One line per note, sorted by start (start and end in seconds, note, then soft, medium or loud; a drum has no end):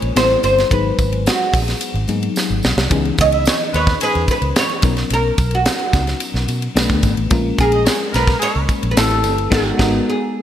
0.00 0.12 A#1 medium
0.00 0.12 G#3 medium
0.00 0.12 A#3 medium
0.00 0.13 C#4 medium
0.00 0.13 F4 medium
0.00 0.13 A#4 medium
0.00 0.16 C#5 loud
0.00 ride medium
0.16 0.35 A1 loud
0.16 0.71 G3 medium
0.16 0.70 B3 medium
0.16 0.71 C4 medium
0.16 0.71 E4 medium
0.16 0.23 G4 medium
0.16 0.43 C5 loud
0.16 snare loud
0.16 ride medium
0.16 tambourine loud
0.24 0.75 A4 medium
0.43 0.62 G1 medium
0.43 0.72 C5 loud
0.43 ride medium
0.43 tambourine medium
0.58 snare soft
0.58 ride soft
0.70 0.90 G#1 loud
0.70 2.05 F#3 medium
0.70 2.05 G#3 medium
0.70 2.06 B3 medium
0.70 2.06 D#4 medium
0.70 2.06 G#4 medium
0.70 1.28 B4 loud
0.70 kick loud
0.70 ride medium
0.70 tambourine soft
0.98 1.27 G#1 loud
0.98 kick loud
0.98 ride medium
0.98 tambourine soft
1.12 ride soft
1.26 2.32 F#4 medium
1.26 snare loud
1.26 ride medium
1.26 tambourine medium
1.53 1.72 A#1 medium
1.53 kick loud
1.53 open hi-hat medium
1.53 ride medium
1.53 tambourine soft
1.68 snare soft
1.68 ride soft
1.81 hi-hat pedal medium
1.81 ride loud
1.81 tambourine medium
1.94 2.04 G#1 loud
1.94 ride soft
2.08 2.27 G#2 loud
2.08 2.91 F#3 medium
2.08 2.91 A#3 medium
2.08 2.89 B3 medium
2.08 2.90 D#4 medium
2.08 2.91 G#4 medium
2.08 ride medium
2.08 tambourine soft
2.23 ride medium
2.36 snare medium
2.36 tambourine loud
2.50 2.60 G#1 loud
2.63 2.74 B1 medium
2.63 snare loud
2.63 tambourine medium
2.77 2.86 C2 medium
2.77 snare loud
2.90 3.10 C#2 loud
2.90 4.79 E3 medium
2.90 4.79 B3 medium
2.90 4.79 C#4 medium
2.90 4.80 D#4 medium
2.90 4.80 G#4 medium
2.90 kick loud
2.90 hi-hat pedal medium
2.90 ride medium
2.90 tambourine soft
3.05 ride soft
3.18 3.47 C#2 loud
3.18 3.30 C#4 medium
3.18 3.30 C#5 medium
3.18 3.75 D#5 loud
3.18 kick loud
3.18 ride medium
3.18 tambourine medium
3.32 3.44 E4 medium
3.32 3.43 E5 loud
3.32 ride soft
3.45 3.57 C#4 medium
3.45 3.57 C#5 medium
3.45 snare loud
3.45 ride medium
3.45 tambourine medium
3.74 3.93 D#2 medium
3.74 3.96 B3 loud
3.74 3.96 B4 loud
3.74 4.00 C#5 loud
3.74 ride medium
3.87 kick medium
3.87 snare soft
3.87 ride soft
4.00 4.23 G#3 loud
4.00 4.23 G#4 loud
4.00 4.30 B4 loud
4.00 ride loud
4.00 tambourine medium
4.15 4.25 E2 medium
4.15 ride soft
4.28 4.58 B4 loud
4.28 kick medium
4.28 ride medium
4.28 tambourine soft
4.42 4.51 C#2 medium
4.42 ride soft
4.56 5.13 C#5 loud
4.56 snare loud
4.56 ride medium
4.56 tambourine medium
4.69 ride soft
4.82 5.02 B1 loud
4.82 6.71 F#3 medium
4.82 6.72 B3 medium
4.82 6.72 C#4 medium
4.82 6.72 D#4 medium
4.82 6.73 A#4 medium
4.82 kick loud
4.82 ride medium
4.82 tambourine medium
4.97 snare soft
4.97 ride soft
5.10 5.30 B1 loud
5.10 5.55 A#4 loud
5.10 ride medium
5.10 tambourine soft
5.38 5.67 B1 loud
5.38 kick loud
5.38 ride medium
5.38 tambourine medium
5.51 6.60 F#4 medium
5.51 ride soft
5.66 snare loud
5.66 ride medium
5.66 tambourine medium
5.79 ride soft
5.93 6.12 C#2 medium
5.93 kick loud
5.93 snare soft
5.93 ride medium
5.93 tambourine soft
6.07 snare soft
6.07 ride soft
6.20 ride loud
6.20 tambourine medium
6.34 6.44 B1 loud
6.34 snare soft
6.48 6.67 B2 loud
6.48 ride medium
6.48 tambourine soft
6.62 ride medium
6.75 6.85 B1 loud
6.75 7.31 A3 medium
6.75 7.31 B3 medium
6.75 7.31 D4 medium
6.75 7.31 F#4 medium
6.75 7.31 B4 loud
6.75 snare loud
6.75 ride medium
6.75 tambourine loud
6.89 6.99 D2 loud
6.89 kick loud
7.03 7.13 G#1 medium
7.03 kick medium
7.03 ride medium
7.03 tambourine medium
7.17 7.27 A1 medium
7.17 ride soft
7.30 7.50 A#1 loud
7.30 8.93 G#3 medium
7.30 8.93 A#3 medium
7.30 8.93 C#4 medium
7.30 8.93 F4 medium
7.30 8.94 A#4 medium
7.30 kick loud
7.30 ride medium
7.30 tambourine soft
7.58 7.87 A#1 loud
7.58 7.70 A#3 medium
7.58 8.15 G#4 loud
7.58 7.70 A#4 medium
7.58 kick medium
7.58 ride medium
7.58 tambourine soft
7.72 7.84 D#4 medium
7.72 7.84 D#5 loud
7.72 ride soft
7.86 7.97 C#4 medium
7.86 7.97 C#5 loud
7.86 snare loud
7.86 ride medium
7.86 tambourine medium
8.13 8.33 B1 loud
8.13 8.36 A#3 loud
8.13 8.35 A#4 loud
8.13 8.42 B4 loud
8.13 snare soft
8.13 ride medium
8.13 tambourine soft
8.27 kick loud
8.27 snare soft
8.27 ride soft
8.40 8.63 G#3 loud
8.40 8.63 G#4 loud
8.40 8.91 C#5 loud
8.40 ride loud
8.40 tambourine medium
8.56 8.65 C#2 medium
8.69 kick medium
8.69 ride medium
8.69 tambourine soft
8.83 8.93 A#1 medium
8.83 ride medium
8.91 8.97 B4 medium
8.95 9.24 A1 loud
8.95 9.51 A3 medium
8.95 9.03 B3 medium
8.95 9.52 E4 medium
8.95 9.52 G4 medium
8.95 9.54 A4 loud
8.95 9.52 B4 medium
8.95 snare loud
8.95 ride medium
8.95 tambourine loud
9.02 9.55 C4 medium
9.11 ride soft
9.24 9.51 G1 loud
9.24 ride medium
9.24 tambourine medium
9.38 ride soft
9.50 9.71 G#1 loud
9.50 9.70 G#3 loud
9.50 9.70 B3 loud
9.50 9.70 D#4 loud
9.50 9.71 F#4 loud
9.50 10.10 F#4 loud
9.50 9.71 A#4 loud
9.50 kick loud
9.50 snare loud
9.50 crash medium
9.77 9.98 G#1 loud
9.77 9.97 G#3 loud
9.77 9.97 B3 loud
9.77 9.98 D#4 loud
9.77 9.98 F#4 loud
9.77 9.98 A#4 loud
9.77 kick loud
9.77 snare loud
10.09 10.42 G#4 medium